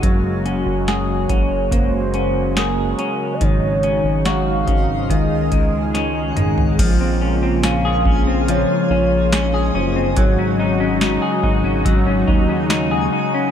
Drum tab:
CC |----------------|----------------|x---------------|----------------|
HH |x-x-x-x-x-x-x-x-|x-x-x-x-x-x-x-x-|x---x---x---x---|x---x---x---x---|
TB |----------------|----------------|----x-------x---|----x-------x---|
SD |----o-------o---|----o-------o---|----o-------o---|----o-------o---|
T2 |----------------|--------------o-|----------------|----------------|
FT |----------------|---------------o|----------------|----------------|
BD |o-----o-o-------|o-----o-o-o-----|o-----o---------|o-----o-o-o-----|